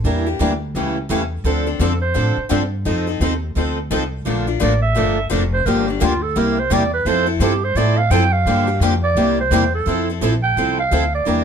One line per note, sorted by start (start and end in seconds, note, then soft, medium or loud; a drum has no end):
0.04 0.39 E2 medium
0.04 0.26 E3 medium
0.04 0.26 G3 medium
0.04 0.26 A#3 medium
0.04 0.25 D4 medium
0.04 0.27 E4 medium
0.04 0.25 G4 medium
0.04 0.27 A#4 medium
0.26 0.39 A#3 soft
0.26 0.40 D4 soft
0.26 0.40 G4 medium
0.40 0.74 D2 medium
0.40 0.52 E3 medium
0.40 0.51 G3 medium
0.40 0.52 A#3 medium
0.40 0.52 D4 medium
0.40 0.52 E4 medium
0.40 0.52 G4 medium
0.40 0.52 A#4 medium
0.75 1.09 C#2 medium
0.75 0.97 C#3 medium
0.75 0.97 E3 medium
0.75 0.96 G3 medium
0.75 0.97 A3 medium
0.75 0.97 C#4 medium
0.75 0.97 E4 medium
0.75 0.97 G4 medium
0.75 0.97 A4 medium
1.09 1.43 E2 medium
1.09 1.22 C#3 medium
1.09 1.22 E3 medium
1.09 1.21 G3 medium
1.09 1.22 A3 medium
1.09 1.22 C#4 medium
1.09 1.22 E4 medium
1.09 1.22 G4 medium
1.09 1.22 A4 medium
1.44 1.79 D2 medium
1.44 1.66 D3 medium
1.44 1.66 F3 medium
1.44 1.66 C4 medium
1.44 1.66 D4 medium
1.44 1.65 A4 medium
1.67 1.80 C4 soft
1.67 1.80 D4 soft
1.67 1.80 A4 medium
1.79 2.14 F2 medium
1.79 1.92 D3 medium
1.79 1.92 F3 medium
1.79 1.92 C4 medium
1.79 1.92 D4 loud
1.79 2.01 A4 medium
1.79 1.92 A4 medium
2.01 2.47 C5 medium
2.14 2.36 A2 medium
2.14 2.36 D3 medium
2.14 2.36 F3 medium
2.14 2.36 C4 medium
2.14 2.36 D4 medium
2.14 2.37 A4 medium
2.37 muted upright bass stroke soft
2.49 2.85 G2 medium
2.49 2.61 D3 medium
2.49 2.61 F3 medium
2.49 2.61 C4 medium
2.49 2.62 D4 medium
2.49 2.62 A4 medium
2.85 3.20 F2 medium
2.85 3.06 F3 medium
2.85 3.07 C4 medium
2.85 3.07 D#4 medium
2.85 3.06 A4 medium
3.07 3.20 C4 soft
3.07 3.21 D#4 medium
3.07 3.20 A4 medium
3.20 3.55 D#2 medium
3.20 3.32 F3 medium
3.20 3.32 C4 medium
3.20 3.32 D#4 medium
3.20 3.33 A4 medium
3.56 3.90 D2 medium
3.56 3.77 F3 medium
3.56 3.77 C4 medium
3.56 3.77 D#4 medium
3.56 3.78 A4 medium
3.91 4.25 C2 medium
3.91 4.02 F3 medium
3.91 4.02 C4 medium
3.91 4.02 D#4 medium
3.91 4.02 A4 medium
4.25 4.60 A#1 medium
4.25 4.46 D3 medium
4.25 4.47 F3 medium
4.25 4.47 A3 medium
4.25 4.47 A#3 medium
4.25 4.47 D4 medium
4.25 4.47 F4 medium
4.25 4.47 A4 medium
4.25 4.46 A#4 medium
4.47 4.59 D4 soft
4.47 4.59 F4 medium
4.47 4.60 A#4 medium
4.60 4.95 A1 medium
4.60 4.72 D3 medium
4.60 4.71 F3 medium
4.60 4.72 A3 medium
4.60 4.73 A#3 medium
4.60 4.72 D4 medium
4.60 4.72 F4 medium
4.60 4.73 A4 medium
4.60 4.72 A#4 medium
4.60 4.81 D5 medium
4.82 5.27 E5 medium
4.95 5.30 G1 medium
4.95 5.17 D3 medium
4.95 5.16 F3 medium
4.95 5.17 A3 medium
4.95 5.18 A#3 medium
4.95 5.17 D4 medium
4.95 5.17 F4 medium
4.95 5.18 A4 medium
4.95 5.17 A#4 medium
5.30 5.65 F1 medium
5.30 5.42 D3 medium
5.30 5.41 F3 medium
5.30 5.42 A3 medium
5.30 5.43 A#3 medium
5.30 5.42 D4 medium
5.30 5.42 F4 medium
5.30 5.43 A4 medium
5.30 5.42 A#4 loud
5.53 5.67 C5 medium
5.66 6.00 G1 medium
5.66 5.88 D3 medium
5.66 5.87 F3 medium
5.66 5.88 A#3 medium
5.66 5.88 D4 medium
5.66 5.87 G4 medium
5.66 5.87 A#4 medium
5.88 6.00 A#3 soft
5.88 6.03 D4 soft
5.88 6.01 D4 soft
5.88 6.00 G4 medium
6.01 6.35 D2 medium
6.01 6.12 D3 medium
6.01 6.12 F3 medium
6.01 6.12 A#3 loud
6.01 6.13 D4 medium
6.01 6.24 F4 medium
6.01 6.12 G4 medium
6.22 6.39 A4 medium
6.36 6.70 C2 medium
6.36 6.57 C3 medium
6.36 6.57 G3 medium
6.36 6.57 A#3 medium
6.36 6.57 E4 medium
6.36 6.57 G4 medium
6.36 6.61 A#4 medium
6.59 6.75 C5 medium
6.70 7.04 E2 medium
6.70 6.82 C3 medium
6.70 6.82 G3 medium
6.70 6.82 A#3 medium
6.70 6.83 E4 loud
6.70 6.82 G4 loud
6.70 6.93 D5 medium
6.93 7.09 B4 medium
7.05 7.39 F2 medium
7.05 7.27 F3 medium
7.05 7.26 C4 medium
7.05 7.26 E4 medium
7.05 7.25 A4 medium
7.05 7.28 C5 medium
7.26 7.40 C4 soft
7.26 7.40 E4 medium
7.26 7.44 E4 soft
7.26 7.40 A4 medium
7.40 7.74 G2 medium
7.40 7.52 F3 medium
7.40 7.52 C4 medium
7.40 7.52 E4 loud
7.40 7.66 G4 medium
7.40 7.52 A4 loud
7.64 7.78 C5 medium
7.75 8.10 A2 medium
7.75 7.97 F3 medium
7.75 7.98 C4 medium
7.75 7.98 E4 medium
7.75 7.98 A4 medium
7.75 7.98 D5 medium
7.97 8.12 F5 loud
8.10 8.45 F#2 medium
8.10 8.22 F3 medium
8.10 8.22 C4 loud
8.10 8.23 E4 loud
8.10 8.23 A4 medium
8.10 8.34 G5 medium
8.33 8.81 F5 medium
8.45 8.80 G2 medium
8.45 8.67 D3 medium
8.45 8.67 F3 medium
8.45 8.67 A#3 medium
8.45 8.67 D4 medium
8.45 8.66 G4 medium
8.67 8.81 A#3 soft
8.67 8.81 D4 medium
8.67 8.81 G4 medium
8.80 9.15 F2 medium
8.80 8.92 D3 medium
8.80 8.93 F3 medium
8.80 8.93 A#3 medium
8.80 8.93 D4 loud
8.80 8.93 G4 loud
9.04 9.36 D5 medium
9.15 9.50 C2 medium
9.15 9.37 C3 medium
9.15 9.38 G3 medium
9.15 9.38 A#3 medium
9.15 9.38 E4 medium
9.15 9.38 G4 medium
9.40 9.72 C5 medium
9.51 9.85 E2 medium
9.51 9.63 C3 medium
9.51 9.63 G3 medium
9.51 9.63 A#3 loud
9.51 9.63 E4 loud
9.51 9.63 G4 loud
9.74 10.06 A4 medium
9.86 10.20 F2 medium
9.86 10.08 F3 medium
9.86 10.08 C4 medium
9.86 10.08 E4 medium
9.86 10.08 A4 medium
10.10 10.23 C4 soft
10.10 10.22 E4 soft
10.10 10.22 A4 medium
10.21 10.55 A#1 medium
10.21 10.33 F3 medium
10.21 10.34 C4 medium
10.21 10.33 E4 medium
10.21 10.34 A4 medium
10.43 10.76 G5 medium
10.56 10.90 C2 medium
10.56 10.78 F3 medium
10.56 10.78 C4 medium
10.56 10.78 E4 medium
10.56 10.79 A4 medium
10.79 11.11 F5 medium
10.91 11.25 D2 medium
10.91 11.03 F3 medium
10.91 11.03 C4 medium
10.91 11.03 E4 medium
10.91 11.03 A4 medium
11.14 11.44 D5 medium
11.26 11.44 E2 medium
11.26 11.44 E3 medium
11.26 11.44 G3 medium
11.26 11.44 A#3 medium
11.26 11.44 D4 medium
11.26 11.44 E4 medium
11.26 11.44 G4 medium
11.26 11.44 A#4 medium